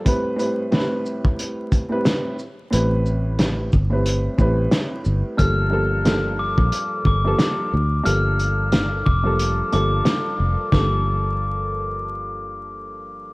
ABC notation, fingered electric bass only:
X:1
M:4/4
L:1/16
Q:"Swing 16ths" 1/4=90
K:Gm
V:1 name="Fingered electric bass" clef=bass
z16 | A,,,6 G,,,4 A,,,2 z2 G,,, z | G,,,6- G,,, B,,, z2 G,,,2 z2 D,,2 | G,,,6 F,,,4 G,,,2 z2 F,,, z |
G,,,16 |]